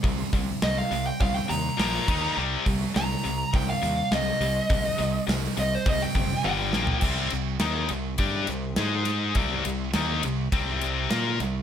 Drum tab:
CC |--------------x-|----------------|----------------|x---------------|
RD |----------------|----------------|----------------|--x-x-x-x-x-x-x-|
HH |o-o-o-o-o-o-o---|--o-o-o-o-o-o-o-|o-o-o-o-o-o-----|----------------|
SD |----o-------o---|----o-------o---|----oo--------o-|----o-------o-o-|
T1 |----------------|----------------|------------o---|----------------|
FT |----------------|----------------|---------------o|----------------|
BD |o-o-----o-----o-|--o-----o-------|o-------o-o-----|o-------o-------|

CC |----------------|
RD |x-x-x-x-x-x-x-x-|
HH |----------------|
SD |----o-------o-o-|
T1 |----------------|
FT |----------------|
BD |o-------o-------|